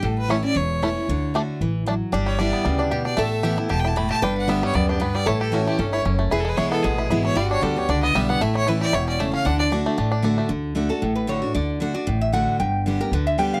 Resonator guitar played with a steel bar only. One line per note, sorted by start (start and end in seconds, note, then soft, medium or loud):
2.12 3.18 G4 medium
3.18 4.22 A4 loud
4.22 5.26 B4 loud
5.26 6.15 A4 loud
6.32 7.33 G#4 loud
7.36 8.12 F#4 loud
8.12 8.42 E4 loud
8.42 9.49 E4 medium
9.46 10.35 D4 medium
10.90 11.15 A4 medium
11.15 11.28 B4 medium
11.29 11.53 C#5 medium
11.55 11.80 D5 medium
11.94 12.19 D5 medium
12.21 12.33 E5 medium
12.33 12.58 F#5 loud
12.60 12.84 G5 medium
13.01 13.12 A#4 loud
13.13 13.26 B4 medium
13.27 13.38 E5 medium
13.39 13.52 G5 loud
13.54 13.60 F5 medium